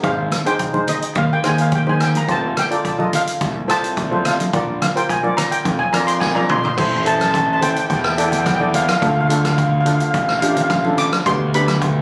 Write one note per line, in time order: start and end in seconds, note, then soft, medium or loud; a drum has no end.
0.03 0.27 G#1 medium
0.03 0.29 D#4 medium
0.03 0.29 G#4 medium
0.03 0.29 C5 medium
0.03 0.48 F5 medium
0.03 kick loud
0.03 closed hi-hat medium
0.32 cross-stick medium
0.32 closed hi-hat medium
0.32 high conga medium
0.32 low conga medium
0.46 0.63 D#4 medium
0.46 0.63 G#4 medium
0.46 0.63 C5 medium
0.46 0.90 G5 medium
0.46 closed hi-hat medium
0.59 kick medium
0.59 closed hi-hat medium
0.73 1.16 D#4 medium
0.73 1.16 G#4 medium
0.73 1.16 C5 medium
0.73 high conga medium
0.88 1.15 D#5 medium
0.88 closed hi-hat medium
0.88 low conga medium
1.02 closed hi-hat medium
1.15 1.28 D#2 medium
1.15 1.32 F5 medium
1.15 kick loud
1.15 closed hi-hat medium
1.33 1.46 G5 medium
1.43 2.14 D#2 medium
1.43 1.70 D#4 medium
1.43 1.69 G#4 medium
1.43 1.69 C5 medium
1.43 1.60 G#5 medium
1.43 cross-stick medium
1.43 closed hi-hat medium
1.58 1.74 F5 medium
1.58 closed hi-hat medium
1.72 1.87 G5 medium
1.72 kick medium
1.72 closed hi-hat medium
1.72 low conga medium
1.87 2.12 D#4 medium
1.87 2.12 G#4 medium
1.87 2.12 C5 medium
1.87 2.02 G#5 medium
1.87 high conga medium
2.00 2.17 G5 medium
2.00 cross-stick medium
2.00 closed hi-hat medium
2.00 low conga medium
2.15 2.30 A#5 loud
2.15 closed hi-hat medium
2.15 high conga medium
2.28 2.52 F1 medium
2.28 2.54 F4 medium
2.28 2.54 A4 medium
2.28 2.54 C5 medium
2.28 2.59 A5 loud
2.28 kick loud
2.28 closed hi-hat medium
2.57 3.16 G5 medium
2.57 cross-stick loud
2.57 closed hi-hat medium
2.57 high conga medium
2.57 low conga medium
2.71 2.87 F4 medium
2.71 2.88 A4 medium
2.71 2.87 D5 medium
2.71 closed hi-hat medium
2.85 kick medium
2.85 closed hi-hat medium
2.98 3.41 F4 medium
2.98 3.41 A4 medium
2.98 3.41 D#5 medium
2.98 high conga medium
3.13 3.72 F5 medium
3.13 closed hi-hat medium
3.13 low conga medium
3.27 closed hi-hat medium
3.41 3.53 C2 medium
3.41 kick loud
3.41 closed hi-hat medium
3.68 4.39 C2 medium
3.68 3.94 F4 medium
3.68 3.94 A4 medium
3.68 3.94 C5 medium
3.68 4.28 A5 loud
3.68 cross-stick medium
3.68 closed hi-hat medium
3.84 closed hi-hat medium
3.97 kick medium
3.97 closed hi-hat medium
3.97 low conga medium
4.11 4.37 F4 medium
4.11 4.37 A4 medium
4.11 4.37 C5 medium
4.11 high conga medium
4.25 4.39 F5 medium
4.25 cross-stick loud
4.25 closed hi-hat medium
4.25 low conga medium
4.40 closed hi-hat medium
4.40 high conga medium
4.53 4.77 A#1 medium
4.53 4.79 F4 medium
4.53 4.79 A#4 medium
4.53 4.79 D5 medium
4.53 kick loud
4.53 closed hi-hat medium
4.82 4.97 F5 medium
4.82 cross-stick medium
4.82 closed hi-hat loud
4.82 high conga medium
4.82 low conga medium
4.96 5.12 F4 medium
4.96 5.12 A#4 medium
4.96 5.12 C5 medium
4.96 5.09 G5 medium
4.96 closed hi-hat medium
5.09 5.39 G#5 medium
5.09 kick medium
5.09 closed hi-hat medium
5.23 5.65 F4 medium
5.23 5.65 A#4 medium
5.23 5.66 D5 medium
5.23 high conga medium
5.37 5.52 A#5 loud
5.37 cross-stick medium
5.37 closed hi-hat loud
5.37 low conga medium
5.51 5.81 G5 medium
5.51 closed hi-hat medium
5.65 5.77 F2 medium
5.65 kick loud
5.65 closed hi-hat medium
5.65 high conga medium
5.79 5.94 G#5 medium
5.93 6.64 F2 medium
5.93 6.19 F4 medium
5.93 6.19 A#4 medium
5.93 6.19 D5 medium
5.93 6.08 A#5 medium
5.93 cross-stick medium
5.93 closed hi-hat medium
6.07 6.22 C6 loud
6.07 closed hi-hat medium
6.20 6.36 G#5 medium
6.20 kick loud
6.20 snare medium
6.20 low conga medium
6.35 6.61 F4 medium
6.35 6.61 A#4 medium
6.35 6.61 D5 medium
6.35 6.74 A#5 loud
6.35 high tom medium
6.35 high conga medium
6.49 6.57 C6 medium
6.49 mid tom medium
6.49 low conga medium
6.58 6.65 C6 medium
6.64 6.73 C6 medium
6.64 floor tom medium
6.64 low conga medium
6.74 7.72 A1 medium
6.74 6.95 E4 medium
6.74 6.95 A4 medium
6.74 6.95 C5 medium
6.74 6.80 C6 medium
6.74 kick loud
6.78 6.88 C6 medium
6.78 crash loud
6.89 6.96 C6 medium
6.97 7.04 C6 medium
7.05 7.39 E4 medium
7.05 7.39 A4 medium
7.05 7.39 C5 medium
7.05 7.14 A5 medium
7.05 closed hi-hat medium
7.15 7.22 A5 medium
7.20 7.30 A5 medium
7.20 cross-stick medium
7.20 closed hi-hat medium
7.20 high conga medium
7.31 7.36 A5 medium
7.31 kick medium
7.31 closed hi-hat medium
7.37 7.44 A5 medium
7.45 7.52 A5 medium
7.53 7.60 A5 medium
7.61 7.96 E4 medium
7.61 7.95 A4 medium
7.61 7.95 C5 medium
7.61 7.70 G5 medium
7.61 closed hi-hat loud
7.61 low conga medium
7.71 7.78 G5 medium
7.76 7.85 G5 medium
7.76 closed hi-hat medium
7.86 8.84 E2 medium
7.86 7.92 G5 medium
7.86 kick loud
7.90 8.00 G5 medium
7.90 closed hi-hat medium
8.01 8.07 G5 medium
8.01 cross-stick loud
8.09 8.15 G5 medium
8.16 8.43 E4 medium
8.16 8.43 A4 medium
8.16 8.43 D5 medium
8.16 8.22 G5 medium
8.16 closed hi-hat loud
8.23 8.30 G5 medium
8.31 8.37 G5 medium
8.31 closed hi-hat medium
8.31 low conga medium
8.39 8.45 G5 medium
8.46 8.53 G5 medium
8.46 kick medium
8.46 cross-stick medium
8.46 closed hi-hat medium
8.46 high conga medium
8.54 8.60 G5 medium
8.60 8.85 E4 medium
8.60 8.85 A4 medium
8.60 8.85 D5 medium
8.60 8.68 G5 medium
8.60 high conga medium
8.74 8.81 F5 medium
8.74 closed hi-hat medium
8.74 low conga medium
8.83 8.89 F5 medium
8.88 8.96 F5 medium
8.88 cross-stick loud
8.88 closed hi-hat medium
8.88 high conga medium
8.98 9.04 F5 medium
9.02 9.96 D2 loud
9.02 9.19 D4 medium
9.02 9.19 F4 medium
9.02 9.19 A4 medium
9.02 9.12 F5 medium
9.02 kick loud
9.02 closed hi-hat medium
9.13 9.19 F5 medium
9.20 9.26 F5 medium
9.27 9.64 D4 medium
9.27 9.64 F4 medium
9.27 9.63 A4 medium
9.27 9.33 F5 medium
9.27 closed hi-hat loud
9.34 9.42 F5 medium
9.43 9.49 F5 soft
9.43 cross-stick medium
9.43 closed hi-hat medium
9.43 high conga medium
9.50 9.57 F5 medium
9.58 9.65 F5 medium
9.58 kick medium
9.58 closed hi-hat medium
9.66 9.72 F5 medium
9.74 9.79 F5 soft
9.80 9.87 F5 medium
9.86 10.20 D4 medium
9.86 10.20 F4 medium
9.86 10.19 A4 medium
9.86 9.95 F5 medium
9.86 closed hi-hat medium
9.86 low conga medium
9.96 10.03 F5 medium
10.00 closed hi-hat medium
10.04 10.09 F5 medium
10.10 11.07 A1 medium
10.10 10.17 F5 medium
10.10 kick loud
10.10 closed hi-hat medium
10.18 10.24 F5 medium
10.25 10.31 F5 medium
10.25 cross-stick medium
10.33 10.38 F5 medium
10.40 10.67 D4 medium
10.40 10.67 F4 medium
10.40 10.67 G4 medium
10.40 10.46 F5 medium
10.40 closed hi-hat medium
10.47 10.54 F5 medium
10.55 10.61 F5 medium
10.55 closed hi-hat medium
10.55 low conga medium
10.62 10.69 F5 medium
10.70 10.76 F5 medium
10.70 kick medium
10.70 cross-stick medium
10.70 closed hi-hat medium
10.70 high conga medium
10.77 10.85 F5 medium
10.85 11.10 D4 medium
10.85 11.10 F4 medium
10.85 11.10 A4 medium
10.85 high conga medium
10.98 11.27 D6 loud
10.98 closed hi-hat medium
10.98 low conga medium
11.12 cross-stick loud
11.12 closed hi-hat medium
11.12 high conga medium
11.26 12.02 D2 loud
11.26 11.43 B3 medium
11.26 11.43 D4 medium
11.26 11.43 G4 medium
11.26 11.55 C6 loud
11.26 kick loud
11.26 closed hi-hat medium
11.54 11.88 B3 medium
11.54 11.88 D4 medium
11.54 11.88 G4 medium
11.54 12.02 B5 loud
11.54 closed hi-hat medium
11.68 cross-stick medium
11.68 closed hi-hat medium
11.68 high conga medium
11.82 kick medium
11.82 closed hi-hat medium